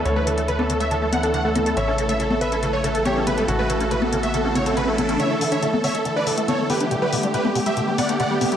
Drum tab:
HH |x-xxx-xxx-xxx-xx|x-xxx-xxx-xxx-xx|x-xxx-xxx-xxx-xx|x-oxx-oxx-oxx-ox|
CG |-----o----o---o-|-----o------o-o-|-----o----o---o-|-----o------o-o-|

HH |x-oxx-oxx-oxx-ox|
CG |-----o----o---o-|